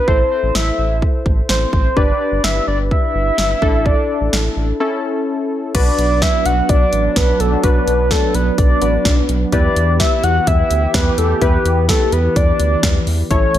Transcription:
0.08 A1 E4 A4 C5, kick
0.31 C5
0.43 A1
0.55 A1 E5, snare
0.79 A1
1.02 kick
1.26 A1, kick
1.49 A1 C5, snare
1.73 A1 C5, kick
1.97 G1 D4 G4 B4 D5, kick
2.20 D5
2.32 G1
2.44 G1 E5, snare
2.68 G1 D5
2.91 E5, kick
3.15 G1
3.38 G1, snare
3.62 A1 D4 E4 A4, kick
3.86 D5, kick
4.21 A1
4.33 A1, snare
4.57 A1
4.80 C#4 E4 A4
5.75 B1 F#3 B3 D4 F#4 B4 D5, kick, closed hi-hat, crash
5.98 B1, closed hi-hat
6.22 E5, kick, snare, closed hi-hat
6.46 B1 F#5, closed hi-hat
6.69 B1 D5, kick, closed hi-hat
6.93 A1, closed hi-hat
7.16 B1 B4, kick, snare, closed hi-hat
7.40 B1 A4, closed hi-hat
7.64 B1 D4 F#4 B4, kick, closed hi-hat
7.87 B1, closed hi-hat
8.11 A4, kick, snare, closed hi-hat
8.34 B1 B4, closed hi-hat
8.58 B1 D5, kick, closed hi-hat
8.82 A1 D4 F#4 B4, closed hi-hat
9.05 B1, kick, snare, closed hi-hat
9.29 B1, closed hi-hat
9.52 E2 E3 E4 G4 B4 D5, kick, closed hi-hat
9.76 E2, closed hi-hat
10.00 E5, kick, snare, closed hi-hat
10.23 E2 F#5, closed hi-hat
10.47 E2 E5, kick, closed hi-hat
10.71 D2, closed hi-hat
10.94 E2 B4, kick, snare, closed hi-hat
11.18 E2 A4, closed hi-hat
11.42 E2 E4 G4 B4, kick, closed hi-hat
11.65 E2, closed hi-hat
11.89 A4, kick, snare, closed hi-hat
12.12 E2 B4, closed hi-hat
12.36 E2 D5, kick, closed hi-hat
12.60 D2, closed hi-hat
12.83 E2, kick, snare, closed hi-hat
13.07 E2, open hi-hat
13.31 A1 A3 C#4 E4 A4 C#5, kick, closed hi-hat
13.54 A1, closed hi-hat

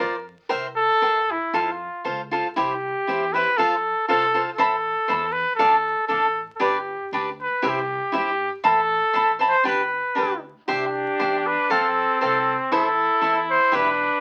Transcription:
Already playing: A#4
0.00 F2 F4 A#4 C5 D5
0.49 C2 A#4 C5 E5 G5
0.76 A4
1.02 G2 A#4 C5 E5 G5
1.31 E4
1.53 F2 F4 A4 C5 F5
1.61 E4
1.71 F4
2.04 C#2 F4 A4 C5 F5
2.31 F4 A4 C5 F5
2.56 C2 E4 G4 C5 E5
3.07 E2 E4 G4 C5 E5
3.33 E4 G4 B4 C5 E5
3.57 F2 F4 A4 C5 F5
4.08 C2 F4 A4 C5 F5
4.34 F4 A4 C5 F5
4.55 A4 C5
4.59 A1 E5 A5 B5
5.08 E2 C5 E5 A5 B5
5.32 B4
5.56 D2 D4 A4 D5 F5
6.08 A1 D4 A4 D5 F5
6.55 A4
6.60 G1 D4 G4 B4 D5
7.12 D2 D4 G4 B4 D5
7.42 B4
7.62 C2 E4 G4 C5 E5
7.68 G4
8.12 G2 E4 G4 C5 E5
8.64 A1 A4 C5 E5 A5 B5
9.13 A1 C5 E5 A5 B5
9.39 C5 E5 A5 B5
9.49 C5
9.64 G1 D4 G4 B4 G5
10.15 D2 D4 G4 B4 G5
10.68 C2 D4 G4 C5 E5 G5
11.19 E2 G4 C5 E5 G5
11.47 B4
11.70 F2 C4 A4 C5 F5 G5
12.21 C2 A4 C5 F5 G5
12.72 A1 E4 A4 C5 E5
13.21 E2 E4 A4 C5 E5
13.50 C5
13.72 E1 D4 E4 G4 B4 E5

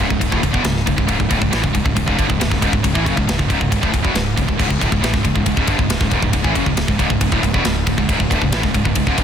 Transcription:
0.00 C#2 G#2
0.08 C#1 C#2 G#2, kick
0.19 C#1 C#2 G#2, kick, ride
0.30 D1 D2 A2, kick
0.41 C#1 C#2 G#2, kick, ride
0.51 E1 E2 B2, kick
0.64 C#1 C#2 G#2, snare, ride
0.77 snare
0.86 C#1 C#2 G#2, kick, ride
0.97 C#1 C#2 G#2, kick
1.07 C#1 C#2 G#2, kick, ride
1.18 C#1 C#2 G#2, kick
1.29 D1 D2 A2, kick, ride
1.40 C#1 C#2 G#2, kick
1.51 A1 A2 E3, snare, ride
1.63 C#1 C#2 G#2, kick
1.73 C#1 C#2 G#2, kick, ride
1.85 C#1 C#2 G#2, kick
1.96 C#1 C#2 G#2, kick, ride
2.06 C#1 C#2 G#2, kick
2.17 G1 G2 D3, kick, ride
2.28 C#1 C#2 G#2, kick
2.40 C#1 C#2 G#2, snare, ride
2.51 C#1 C#2 G#2, kick, snare
2.61 C#1 C#2 G#2, kick, ride
2.73 C#1 C#2 G#2, kick
2.84 C#1 C#2 G#2, kick, ride
2.95 A1 A2 E3, kick
3.06 F#1 F#2 C#3, kick, ride
3.16 C#1 C#2 G#2, kick
3.27 C#1 C#2 G#2, snare, ride
3.39 C#1 C#2 G#2, kick
3.50 C#1 C#2 G#2, kick, ride
3.60 C#1 C#2 G#2, kick
3.71 C#1 C#2 G#2, kick, ride
3.82 D1 D2 A2, kick
3.93 C#1 C#2 G#2, kick, ride
4.03 E1 E2 B2, kick
4.14 C#1 C#2 G#2, snare, ride
4.37 C#1 C#2 G#2, kick, ride
4.48 C#1 C#2 G#2, kick
4.59 C#1 C#2 G#2, kick, crash
4.70 C#1 C#2 G#2, kick
4.80 D1 D2 A2, kick, ride
4.91 C#1 C#2 G#2, kick
5.02 A1 A2 E3, snare, ride
5.13 C#1 C#2 G#2, kick, snare
5.24 C#1 C#2 G#2, kick, ride
5.35 C#1 C#2 G#2, kick
5.46 C#1 C#2 G#2, kick, ride
5.56 C#1 C#2 G#2, kick
5.67 G1 G2 D3, kick, ride
5.78 C#1 C#2 G#2, kick
5.88 C#1 C#2 G#2, snare, ride
6.00 C#1 C#2 G#2, kick, snare
6.10 C#1 C#2 G#2, kick, ride
6.21 C#1 C#2 G#2, kick
6.33 C#1 C#2 G#2, kick, ride
6.43 A1 A2 E3, kick
6.54 F#1 F#2 C#3, kick, ride
6.66 C#1 C#2 G#2, kick
6.77 C#1 C#2 G#2, snare, ride
6.88 C#1 C#2 G#2, kick
6.99 C#1 C#2 G#2, kick, ride
7.10 C#1 C#2 G#2, kick
7.21 C#1 C#2 G#2, kick, ride
7.32 D1 D2 A2, kick
7.43 C#1 C#2 G#2, kick, ride
7.54 E1 E2 B2, kick
7.65 C#1 C#2 G#2, snare, ride
7.87 C#1 C#2 G#2, kick, ride
7.98 C#1 C#2 G#2, kick
8.09 C#1 C#2 G#2, kick, ride
8.20 C#1 C#2 G#2, kick
8.31 D1 D2 A2, kick, ride
8.42 C#1 C#2 G#2, kick
8.51 A1 A2 E3, snare, ride
8.63 C#1 C#2 G#2, kick, snare
8.74 C#1 C#2 G#2, kick, ride
8.84 C#1 C#2 G#2, kick
8.95 C#1 C#2 G#2, kick, ride
9.07 C#1 C#2 G#2, kick
9.18 G1 G2 D3, kick, ride

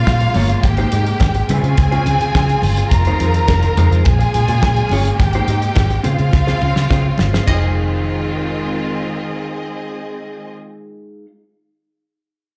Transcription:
Already playing: C#3 G#3 A#3 F4 F5
0.07 A#2, kick, snare, high conga
0.20 muted clean electric guitar stroke, closed hi-hat
0.34 G1 A#3 F4 G#4 C#5, open hi-hat, high conga
0.49 muted clean electric guitar stroke, closed hi-hat
0.63 G#1 C3 G4 G5, muted clean electric guitar stroke, kick, closed hi-hat, muted conga
0.77 A#3 D#4 G4 C5, closed hi-hat
0.92 G#2 A#3 D#4 G4 D#5, closed hi-hat
1.06 muted clean electric guitar stroke, closed hi-hat
1.20 G#1, muted clean electric guitar stroke, kick, snare, high conga
1.35 muted clean electric guitar stroke, closed hi-hat
1.49 C#3 G#3 C4 C#4 F4 G#4 C5 G#5, closed hi-hat, muted conga
1.64 C#3 G#3 C#4 F4 C5, closed hi-hat
1.77 C#2, muted clean electric guitar stroke, kick, closed hi-hat
1.91 G#3 C#4 F4 C5, closed hi-hat
2.06 C#3, muted clean electric guitar stroke, closed hi-hat, muted conga
2.20 C#3, muted clean electric guitar stroke, closed hi-hat
2.35 C#3, muted clean electric guitar stroke, kick, snare, high conga
2.49 muted clean electric guitar stroke, closed hi-hat
2.62 G1, open hi-hat, high conga
2.77 muted clean electric guitar stroke, closed hi-hat
2.90 F1 D#3 G#3 C4 A#4 A#5, muted clean electric guitar stroke, kick, closed hi-hat, muted conga
3.05 G#3 D#4 F4 C5, closed hi-hat
3.20 F2 G#3 D#4 F4 C5, closed hi-hat
3.34 muted clean electric guitar stroke, closed hi-hat
3.48 F1, muted clean electric guitar stroke, kick, snare, high conga
3.63 muted clean electric guitar stroke, closed hi-hat
3.77 F2 G#3 D#4 F4 C5, closed hi-hat, muted conga, low conga
3.91 F2 G#3 D#4 F4 C5, closed hi-hat
4.05 A#1 C#3 A#3 F4 G#4 G#5, muted clean electric guitar stroke, kick, closed hi-hat
4.19 muted clean electric guitar stroke, closed hi-hat
4.34 A#2, closed hi-hat, muted conga
4.48 A#2, muted clean electric guitar stroke, closed hi-hat
4.62 A#2, kick, snare, high conga
4.77 muted clean electric guitar stroke, closed hi-hat
4.89 G1 C#4 F4 G#4 C#5, open hi-hat, high conga
5.05 muted clean electric guitar stroke, closed hi-hat
5.19 G#1 C3 G4 G5, muted clean electric guitar stroke, kick, closed hi-hat, muted conga
5.33 A#3 D#4 G4 C5, closed hi-hat
5.47 G#2 A#3 D#4 G4 D#5, closed hi-hat, muted conga
5.62 muted clean electric guitar stroke, closed hi-hat
5.76 G#1, muted clean electric guitar stroke, kick, snare, high conga
5.90 muted clean electric guitar stroke, closed hi-hat
6.04 C#3 C4 F4 G#4 C5 F5, closed hi-hat, muted conga
6.19 C#3 C4 F4 G#4 C5, closed hi-hat
6.33 C#2, muted clean electric guitar stroke, kick, snare
6.47 C4 F4 G#4 C5, snare
6.62 C#3, muted clean electric guitar stroke, muted conga
6.76 C#3, muted clean electric guitar stroke, snare
6.90 C#3 C4 F4 G#4 C5, kick, snare, high conga
7.06 muted clean electric guitar stroke
7.18 G1, muted clean electric guitar stroke, snare, high conga
7.33 C4 F4 G#4 C5, snare
7.46 F1 D#3 G#3 C4 D#4 F4 G#4 D#5, kick, ride bell, muted conga
7.51 C5

